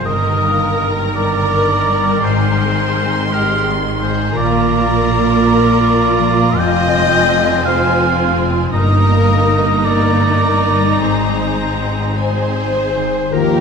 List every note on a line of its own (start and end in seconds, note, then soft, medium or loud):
0.05 2.19 G1 medium
0.05 2.19 G2 medium
0.05 2.26 G2 medium
0.05 4.32 D#3 medium
0.05 1.13 A#4 medium
0.05 3.28 A#4 medium
0.05 0.85 D#5 medium
0.05 2.19 A#5 medium
0.43 2.26 A#3 soft
0.79 1.51 A#4 soft
1.15 4.39 D#4 soft
1.15 2.21 A#4 medium
1.15 2.25 D5 medium
1.88 2.27 G3 soft
2.23 4.32 G#1 medium
2.23 4.32 G#2 medium
2.23 4.39 G#2 soft
2.23 3.29 G#4 medium
2.23 3.34 C5 medium
2.23 4.36 C6 medium
2.60 4.40 C4 soft
2.96 4.39 G#3 soft
3.31 4.36 G#3 medium
3.31 3.66 G4 medium
3.31 3.67 A#4 medium
3.31 4.40 D#5 soft
3.67 4.39 G#4 soft
4.01 4.39 D#3 soft
4.01 4.34 G#4 medium
4.01 4.38 C5 medium
4.36 6.53 A#1 medium
4.36 6.53 A#2 medium
4.36 6.60 A#2 medium
4.36 6.53 A#3 medium
4.36 8.70 F4 medium
4.36 6.57 A#4 medium
4.36 6.59 D5 medium
4.36 6.53 A#5 medium
4.71 6.60 A#3 soft
5.06 5.79 F4 soft
5.42 6.60 A#4 soft
5.80 7.29 F4 soft
6.19 8.77 F3 medium
6.57 8.74 F1 medium
6.57 8.76 F2 medium
6.57 8.74 F2 medium
6.57 8.70 C4 medium
6.57 7.66 D#5 medium
6.57 7.67 G5 loud
6.57 8.74 G#5 medium
6.94 8.77 G#3 soft
7.30 8.00 F4 soft
7.65 8.36 C5 medium
7.65 8.37 F5 medium
8.02 8.77 F4 medium
8.37 8.77 C3 soft
8.73 10.97 G1 medium
8.73 10.97 G2 medium
8.73 11.04 G2 medium
8.73 11.01 A#3 medium
8.73 13.14 D#4 medium
8.73 9.81 A#4 medium
8.73 9.86 D#5 medium
8.73 12.15 A#5 medium
9.10 11.04 A#3 soft
9.47 10.21 D#4 soft
9.84 13.60 A#4 soft
9.84 10.98 A#4 medium
9.84 11.00 D5 medium
10.22 11.78 D#4 soft
10.61 11.04 G3 soft
11.00 13.09 G#1 medium
11.00 13.36 G#2 soft
11.00 13.09 G#2 soft
11.00 13.09 C4 soft
11.00 12.16 G#4 medium
11.00 12.16 C5 medium
11.40 13.37 G#3 soft
11.79 12.56 D#4 soft
12.17 13.29 G#4 medium
12.17 13.34 C5 medium
12.17 13.29 C5 medium
12.17 13.30 C5 medium
12.17 13.60 C5 soft
12.17 13.13 G#5 soft
12.57 13.60 D#4 soft
12.95 13.32 D#3 soft
13.33 13.60 D#2 medium
13.33 13.60 D#3 medium
13.33 13.60 F3 medium
13.33 13.60 F4 medium
13.33 13.60 G4 medium
13.33 13.60 A#4 medium